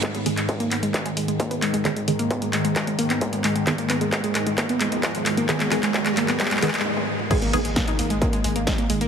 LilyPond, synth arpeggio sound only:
\new Staff \with { instrumentName = "Synth arpeggio sound" } { \clef bass \time 4/4 \key gis \minor \tempo 4 = 132 gis16 gis16 gis16 gis16 gis16 ais16 b16 gis16 gis16 gis16 gis16 gis16 ais16 b16 gis16 gis16 | gis16 gis16 gis16 ais16 b16 gis16 gis16 gis16 gis16 gis16 ais16 b16 gis16 gis16 gis16 gis16 | gis16 ais16 b16 gis16 gis16 gis16 gis16 gis16 ais16 b16 gis16 gis16 gis16 gis16 gis16 ais16 | b16 gis16 gis16 gis16 gis16 gis16 ais16 b16 gis16 gis16 gis16 gis16 r4 |
gis16 ais16 gis16 gis16 ais16 dis'16 ais16 gis16 ais16 gis16 gis16 ais16 dis'16 ais16 gis16 ais16 | }